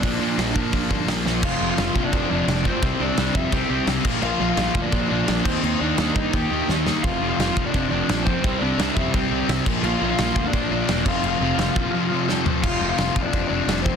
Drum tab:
CC |--------|x-x-x-x-|x-x-x-xx|x-x-x-xx|
HH |o-o-o-o-|--------|--------|--------|
SD |--o---oo|--o---o-|--o---o-|--o---o-|
FT |--------|--------|--------|--------|
BD |o--ooo--|o--oo--o|o--oo--o|---oo--o|

CC |x-x-x---|x-x-x-x-|x-x-x-xx|x-x-x-xx|
HH |--------|--------|--------|--------|
SD |--o---oo|--o---o-|--o---o-|--o---o-|
FT |--------|--------|--------|--------|
BD |---oo---|o--oo--o|o--oo--o|---oo--o|

CC |x-x-----|x-x-x-x-|
HH |--------|--------|
SD |--o---o-|--o---o-|
FT |-------o|--------|
BD |---o----|o--oo--o|